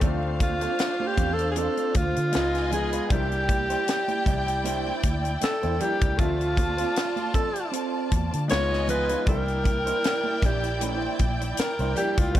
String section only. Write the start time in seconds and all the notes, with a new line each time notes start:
0.02 D4 C5 F5
2.34 F4 D#5 G#5
3.11 E4 D5 G5
6.19 F4 D5 A5
8.51 F4 D#5 G#5
9.29 E4 D5 G5
12.34 D4 C5 F5